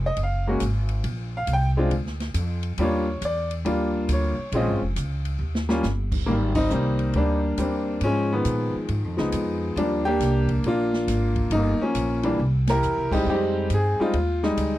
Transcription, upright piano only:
0.06 0.19 D#5 medium
0.23 0.48 F5 medium
0.47 0.60 G#3 medium
0.47 0.60 A#3 medium
0.47 0.61 C#4 medium
0.47 0.61 F#4 medium
1.37 1.50 F5 medium
1.53 1.69 G5 loud
1.77 1.90 G#3 medium
1.77 1.91 C4 medium
1.77 1.91 D4 medium
1.77 1.91 F4 medium
2.79 3.05 G3 medium
2.79 3.06 A#3 medium
2.79 3.06 D4 medium
2.79 3.06 F4 medium
2.84 3.22 C#5 medium
3.25 3.52 D5 medium
3.65 4.32 G3 medium
3.65 4.33 A#3 medium
3.65 4.33 D4 medium
3.65 4.33 F4 medium
4.13 4.52 C#5 medium
4.54 4.79 G#3 medium
4.54 4.80 C4 medium
4.54 4.80 C#4 medium
4.54 4.80 F4 medium
4.54 4.73 D#5 medium
5.69 5.83 G3 medium
5.69 5.83 A#3 medium
5.69 5.83 C#4 medium
5.69 5.83 F4 medium
6.26 7.11 D#3 medium
6.26 6.55 G3 medium
6.26 6.33 A#3 medium
6.55 6.69 G3 medium
6.55 6.70 C4 medium
6.55 6.71 D#4 loud
6.71 7.15 G3 medium
6.71 7.14 A#3 medium
6.71 7.38 C4 medium
6.71 7.38 D#4 medium
7.16 7.57 G3 medium
7.16 7.58 A#3 medium
7.16 7.59 D4 medium
7.58 8.02 G3 medium
7.58 8.03 A#3 soft
7.58 8.03 C4 medium
7.58 8.03 D4 medium
8.04 8.32 F3 medium
8.04 8.87 G#3 medium
8.04 8.33 C#4 loud
8.33 9.16 D#3 medium
8.33 9.15 F3 medium
8.33 8.73 B3 medium
9.17 9.73 F3 medium
9.17 9.74 G#3 medium
9.17 9.74 B3 medium
9.17 9.74 D#4 medium
9.78 10.03 F3 medium
9.78 10.04 G3 medium
9.78 10.04 A#3 medium
9.78 10.04 D4 medium
10.05 10.65 A#3 medium
10.05 10.65 D4 medium
10.05 10.46 G4 loud
10.66 11.49 A#3 medium
10.66 11.49 D4 medium
10.66 11.50 F4 loud
11.52 11.82 A#3 medium
11.52 11.82 D#4 medium
11.81 12.37 F3 medium
11.81 12.23 A#3 medium
11.81 12.22 C#4 medium
12.23 12.37 E3 medium
12.23 12.38 G3 medium
12.23 12.38 A#3 medium
12.23 12.38 D4 medium
12.70 13.24 E4 medium
12.70 13.11 G4 medium
12.70 13.10 A#4 loud
13.12 13.67 G3 medium
13.12 13.67 G#3 medium
13.12 13.29 C4 medium
13.12 13.29 D#4 medium
13.12 13.26 G4 medium
13.30 14.00 C4 medium
13.30 14.00 D#4 medium
13.30 13.69 G4 loud
13.74 13.99 G#4 medium
14.00 14.13 G3 medium
14.00 14.13 G#3 medium
14.00 14.14 C4 medium
14.00 14.14 D#4 medium
14.00 14.41 F4 medium
14.43 14.78 G3 medium
14.43 14.78 G#3 medium
14.43 14.78 D#4 medium

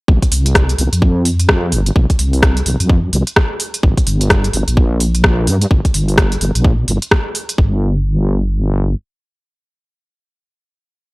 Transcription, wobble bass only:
0.08 0.19 C2 medium
0.32 0.75 C2 medium
0.79 0.89 C2 medium
0.93 1.74 F2 loud
1.72 1.91 G1 loud
1.96 2.06 C2 medium
2.19 2.62 C2 medium
2.66 2.77 C2 medium
2.80 3.09 F2 loud
3.13 3.24 C2 medium
3.83 3.94 G1 loud
4.07 4.50 G1 medium
4.54 4.64 G1 medium
4.68 5.49 A#1 medium
5.47 5.66 G2 loud
5.71 5.81 G1 loud
5.94 6.37 G1 medium
6.41 6.52 G1 medium
6.55 6.84 A#1 loud
6.88 6.99 G1 medium
7.58 8.95 G1 medium

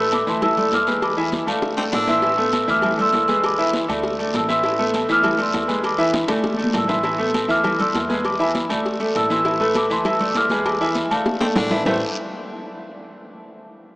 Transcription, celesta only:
0.00 0.15 E6 medium
0.14 0.27 B5 medium
0.14 0.29 D6 medium
0.29 0.35 A5 medium
0.29 0.35 C6 loud
0.43 0.71 A5 medium
0.43 0.71 E6 loud
0.74 1.02 D6 medium
0.74 1.04 F6 loud
1.03 1.10 B5 medium
1.03 1.10 D6 loud
1.19 1.47 G#5 medium
1.19 1.47 B5 medium
1.47 1.90 F5 medium
1.47 1.89 A5 medium
1.93 2.00 A5 medium
1.93 2.01 E6 loud
2.10 2.65 C6 medium
2.10 2.65 E6 loud
2.70 2.97 D6 medium
2.70 3.00 F6 loud
3.01 3.42 C6 medium
3.01 3.42 E6 loud
3.45 3.59 B5 medium
3.45 3.60 D6 loud
3.60 4.02 G#5 medium
3.60 4.01 B5 medium
4.35 4.41 A5 medium
4.35 4.43 E6 loud
4.50 5.06 C6 medium
4.50 5.06 E6 loud
5.12 5.38 D6 medium
5.12 5.39 F6 loud
5.41 5.83 C6 medium
5.41 5.82 E6 loud
5.86 5.99 B5 medium
5.86 5.99 D6 loud
6.01 6.43 G#5 medium
6.01 6.42 B5 medium
6.76 6.89 A5 medium
6.76 6.90 E6 loud
6.91 7.46 C6 medium
6.91 7.47 E6 loud
7.51 7.78 D6 medium
7.51 7.78 F6 loud
7.81 8.23 C6 medium
7.81 8.22 E6 loud
8.25 8.39 B5 medium
8.25 8.39 D6 loud
8.41 8.83 G#5 medium
8.41 8.82 B5 medium
9.16 9.23 A5 medium
9.16 9.23 E6 loud
9.31 9.73 C6 medium
9.31 9.77 E6 loud
9.76 9.90 B5 medium
9.76 9.90 D6 medium
9.92 9.99 A5 medium
9.92 9.99 C6 loud
10.07 10.35 A5 medium
10.07 10.35 E6 loud
10.37 10.64 D6 medium
10.37 10.67 F6 loud
10.66 10.80 B5 medium
10.66 10.80 D6 loud
10.81 11.09 G#5 medium
10.81 11.10 B5 medium
11.11 11.54 F5 medium
11.11 11.53 A5 medium

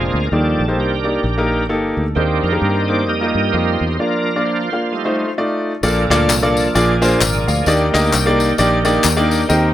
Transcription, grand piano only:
0.00 0.19 A#3 medium
0.00 0.19 F4 medium
0.00 0.19 G#4 medium
0.00 0.19 C5 medium
0.32 1.01 D#3 medium
0.32 0.59 A#3 medium
0.32 0.59 D#4 medium
0.32 0.59 G4 medium
0.32 0.59 D5 medium
0.68 0.91 A#3 medium
0.68 0.91 D#4 medium
0.68 0.91 G4 medium
0.68 0.91 C5 medium
1.04 1.23 A#3 medium
1.04 1.24 D#4 medium
1.04 1.24 G4 medium
1.04 1.24 D5 medium
1.38 1.60 A#3 medium
1.38 1.60 D#4 medium
1.38 1.61 G4 medium
1.38 1.61 A#4 medium
1.69 2.03 A#3 medium
1.69 2.03 D#4 medium
1.69 2.03 G4 medium
1.69 2.03 A4 medium
2.16 2.85 D#3 medium
2.16 2.43 A#3 medium
2.16 2.43 D#4 medium
2.16 2.43 G4 medium
2.16 2.43 C5 medium
2.52 2.75 A#3 medium
2.52 2.75 D#4 medium
2.52 2.75 G4 medium
2.52 2.75 A#4 medium
2.89 3.08 A#3 medium
2.89 3.08 D#4 medium
2.89 3.08 G4 medium
2.89 3.08 C5 medium
3.21 3.44 A#3 medium
3.21 3.44 F4 medium
3.21 3.44 G4 medium
3.21 3.44 D#5 medium
3.54 3.87 A#3 medium
3.54 3.87 F4 medium
3.54 3.87 G4 medium
3.54 3.87 D#5 medium
3.99 4.27 A#3 medium
3.99 4.27 D4 medium
3.99 4.27 F4 medium
3.99 4.27 D5 medium
4.36 4.59 A#3 medium
4.36 4.59 D4 medium
4.36 4.59 F4 medium
4.36 4.59 D5 medium
4.72 4.91 A#3 medium
4.72 4.92 D4 medium
4.72 4.92 F4 medium
4.72 4.92 F5 medium
5.05 5.28 A3 medium
5.05 5.28 D#4 medium
5.05 5.28 F4 medium
5.05 5.28 C5 medium
5.38 5.71 A3 medium
5.38 5.71 D#4 medium
5.38 5.71 F4 medium
5.38 5.71 D5 medium
5.83 6.52 A#2 medium
5.83 6.01 A#3 medium
5.83 6.01 D4 medium
5.83 6.01 F4 medium
5.83 6.01 A4 medium
5.83 6.01 D5 loud
6.10 6.29 A#3 loud
6.10 6.29 D4 medium
6.10 6.29 F4 medium
6.10 6.29 A4 medium
6.10 6.30 D5 loud
6.43 6.66 A#3 medium
6.43 6.66 D4 medium
6.43 6.66 F4 medium
6.43 6.66 A4 medium
6.43 6.66 D5 loud
6.75 7.44 A#2 medium
6.75 6.93 A#3 medium
6.75 6.93 D4 medium
6.75 6.93 F4 medium
6.75 6.93 G#4 medium
6.75 6.93 D5 loud
7.02 7.21 A#3 medium
7.02 7.21 D4 medium
7.02 7.21 F4 medium
7.02 7.21 G#4 medium
7.02 7.21 C5 loud
7.20 7.47 A#4 medium
7.20 7.46 D5 medium
7.48 7.66 D5 medium
7.48 7.91 F5 medium
7.67 8.36 D#3 medium
7.67 7.85 A#3 medium
7.67 7.85 D4 medium
7.67 7.85 D#4 medium
7.67 7.85 G4 medium
7.67 7.85 D5 loud
7.94 8.13 A#3 loud
7.94 8.13 D4 medium
7.94 8.13 D#4 medium
7.94 8.13 G4 medium
7.94 8.13 D#5 loud
8.26 8.49 A#3 medium
8.26 8.49 D4 medium
8.26 8.49 D#4 medium
8.26 8.49 G4 medium
8.26 8.49 D5 loud
8.58 8.76 A#3 medium
8.58 8.76 D4 medium
8.58 8.77 D#4 medium
8.58 8.77 G4 medium
8.58 8.77 D5 loud
8.85 9.04 A#3 medium
8.85 9.04 D4 medium
8.85 9.04 D#4 medium
8.85 9.04 G4 medium
8.85 9.04 D5 loud
9.17 9.40 A#3 medium
9.17 9.40 D4 medium
9.17 9.40 D#4 medium
9.17 9.40 G4 medium
9.17 9.40 D5 loud
9.49 9.74 D#3 medium
9.49 9.67 C4 medium
9.49 9.68 D#4 medium
9.49 9.67 G4 medium
9.49 9.68 A#4 medium
9.49 9.68 D#5 loud

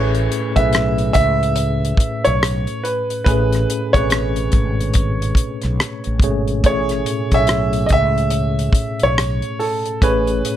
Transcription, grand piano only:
0.00 0.52 C#5 medium
0.56 1.12 E5 medium
1.13 2.28 E5 loud
2.24 2.85 C#5 medium
2.84 3.23 B4 medium
3.24 3.96 B4 medium
3.93 6.17 C#5 medium
6.66 7.35 C#5 medium
7.34 7.88 E5 loud
7.86 7.91 D#5 medium
7.93 9.05 E5 medium
9.03 9.63 C#5 medium
9.59 10.03 A4 medium
10.03 10.57 B4 medium

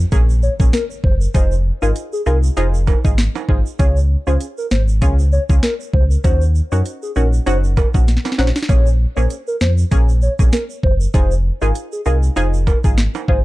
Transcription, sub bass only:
0.12 0.49 A#1 loud
0.60 0.70 A#1 loud
1.04 1.28 F#1 loud
1.35 1.72 F1 loud
1.82 1.93 G#1 medium
2.26 2.50 C2 medium
2.57 2.94 F1 loud
3.05 3.28 G#1 medium
3.49 3.62 G#1 medium
3.79 4.17 C#2 loud
4.27 4.38 C#2 loud
4.71 5.03 G#1 medium
5.02 5.39 C#2 loud
5.49 5.60 C#2 medium
5.94 6.17 C#2 loud
6.24 6.61 D#2 loud
6.72 6.83 F#2 medium
7.16 7.40 A#1 medium
7.47 7.84 F#1 loud
7.94 8.18 A#1 medium
8.39 8.52 A#1 loud
8.69 9.06 A#1 loud
9.17 9.27 A#1 medium
9.61 9.85 F2 medium
9.92 10.29 A#1 loud
10.39 10.50 A#1 medium
10.83 11.07 F#1 medium
11.14 11.51 F1 loud
11.62 11.72 G#1 medium
12.06 12.30 C2 medium
12.37 12.74 F1 loud
12.84 13.08 G#1 medium
13.28 13.42 G#1 medium

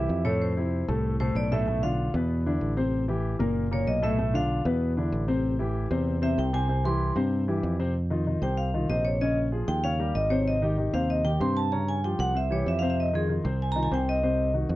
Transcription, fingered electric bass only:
0.09 0.83 F2 medium
0.88 1.32 C2 loud
1.35 2.09 B1 medium
2.14 2.58 E2 medium
2.61 3.34 A1 medium
3.40 3.84 F#1 medium
3.87 4.60 B1 medium
4.65 5.09 E2 loud
5.12 5.85 A1 loud
5.91 6.35 E2 loud
6.38 7.11 C2 loud
7.16 7.60 G2 medium
7.63 8.36 F2 medium
8.42 8.86 C2 medium
8.89 9.62 A#1 medium
9.68 10.12 D#2 loud
10.15 10.88 G#1 medium
10.93 11.37 D#2 medium
11.40 12.13 G2 medium
12.19 12.63 C2 loud
12.66 13.39 F2 medium
13.45 13.88 C2 loud
13.91 14.64 C2 medium
14.69 14.76 F2 loud

